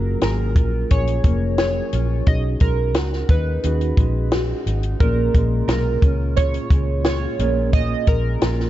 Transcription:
Already playing: fingered electric bass F#1, nylon-string guitar F#3 A#3, tine electric piano A#3 C#4 F4 G#4, synth keys A#4
0.21 fingered electric bass G#1, nylon-string guitar G#4, synth keys A#4, snare, closed hi-hat
0.56 fingered electric bass A#1, nylon-string guitar F4, kick, closed hi-hat
0.90 fingered electric bass A#1, tine electric piano A#3 C#4 F4 G#4, nylon-string guitar G#4, synth keys C#5, kick, closed hi-hat
1.07 closed hi-hat
1.24 fingered electric bass F1, nylon-string guitar A#3, kick, closed hi-hat
1.58 nylon-string guitar G#4, synth keys C#5, snare, closed hi-hat
1.93 fingered electric bass A#1, nylon-string guitar F4, closed hi-hat
2.26 fingered electric bass B1, tine electric piano C#4 D#4 F#4 G#4, synth keys D#5, kick, closed hi-hat
2.60 fingered electric bass B1, nylon-string guitar G#3, synth keys A#4, kick, closed hi-hat
2.94 fingered electric bass C#2, nylon-string guitar F#4, snare, closed hi-hat
3.13 snare
3.29 fingered electric bass D#2, nylon-string guitar D#4, synth keys B4, kick, closed hi-hat
3.63 fingered electric bass D#2, tine electric piano C#4 D#4 F#4 G#4, nylon-string guitar F#4, closed hi-hat
3.81 closed hi-hat
3.97 fingered electric bass A#1, nylon-string guitar G#3, kick, closed hi-hat
4.31 nylon-string guitar F#4, snare, closed hi-hat
4.66 fingered electric bass G#1, nylon-string guitar D#4, closed hi-hat
4.83 closed hi-hat
5.00 fingered electric bass A#1, nylon-string guitar A#2, tine electric piano A#3 C#4 F4 G#4, synth keys A#4, kick, closed hi-hat
5.34 fingered electric bass A#1, nylon-string guitar G#3, kick, closed hi-hat
5.68 fingered electric bass B1, nylon-string guitar F4, synth keys A#4, snare, closed hi-hat
6.02 fingered electric bass C#2, nylon-string guitar C#4, kick, closed hi-hat
6.36 tine electric piano A#3 C#4 F4 G#4, nylon-string guitar F4, synth keys C#5, kick, closed hi-hat
6.54 closed hi-hat
6.70 fingered electric bass C#2, nylon-string guitar G#3, kick, closed hi-hat
7.04 nylon-string guitar F4, synth keys C#5, snare, closed hi-hat
7.39 fingered electric bass A#1, nylon-string guitar A#2, tine electric piano A#3 C#4 F4 G#4, closed hi-hat
7.73 nylon-string guitar A#2, synth keys D#5, kick, closed hi-hat
8.07 fingered electric bass A#1, nylon-string guitar G#3, synth keys A#4, kick, closed hi-hat
8.41 fingered electric bass A#1, nylon-string guitar F4, snare, closed hi-hat
8.60 snare

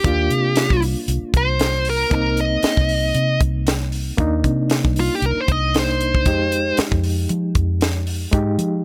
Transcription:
Already playing: lead electric guitar G4
0.04 fingered electric bass D#2, reed electric piano A#3 D4 F4, kick, closed hi-hat
0.30 fingered electric bass C3, closed hi-hat
0.56 snare, closed hi-hat
0.70 fingered electric bass C2, kick
0.82 open hi-hat
1.08 fingered electric bass C2, closed hi-hat
1.34 fingered electric bass C2, lead electric guitar C5, kick, closed hi-hat
1.59 snare, closed hi-hat
1.85 open hi-hat
1.90 lead electric guitar A#4
2.10 fingered electric bass C2, reed electric piano A#3 C4 D#4, kick, closed hi-hat
2.15 lead electric guitar A#4
2.37 lead electric guitar D#5, closed hi-hat
2.63 muted fingered electric bass stroke, snare, closed hi-hat
2.77 fingered electric bass C2, kick
2.89 open hi-hat
3.15 fingered electric bass C3, closed hi-hat
3.41 fingered electric bass C2, kick, closed hi-hat
3.67 snare, closed hi-hat
3.92 open hi-hat
4.18 fingered electric bass D#2, reed electric piano A#3 D4 D#4, kick, closed hi-hat
4.44 fingered electric bass C3, kick, closed hi-hat
4.70 snare, closed hi-hat
4.84 fingered electric bass C2, kick
4.96 open hi-hat
5.00 lead electric guitar F4
5.15 lead electric guitar G4
5.22 fingered electric bass C2, lead electric guitar A#4, closed hi-hat
5.40 lead electric guitar C5
5.48 fingered electric bass C2, lead electric guitar D#5, kick, closed hi-hat
5.74 reed electric piano A#3 D4 D#4, snare, closed hi-hat
5.79 lead electric guitar C5
6.01 closed hi-hat
6.15 kick
6.26 fingered electric bass F2, reed electric piano G#3 D#4 G4, kick, closed hi-hat
6.52 closed hi-hat
6.77 muted fingered electric bass stroke, snare, closed hi-hat
6.92 fingered electric bass F2, kick
7.04 open hi-hat
7.29 fingered electric bass F3, closed hi-hat
7.55 fingered electric bass F2, kick, closed hi-hat
7.81 snare, closed hi-hat
8.07 open hi-hat
8.32 fingered electric bass G#2, reed electric piano G#3 D#4 G4, kick, closed hi-hat
8.58 fingered electric bass F3, closed hi-hat

